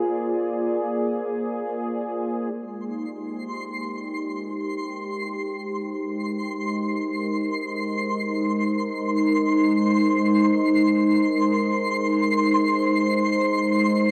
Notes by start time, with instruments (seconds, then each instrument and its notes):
Already playing: analog synth pad A#3 F4 G#4 C5 D5
2.53 analog synth pad G#3, synth texture C6
2.81 analog synth pad D#4 G4
3.11 analog synth pad C5
3.56 analog synth pad A#4
11.10 analog synth pad G#4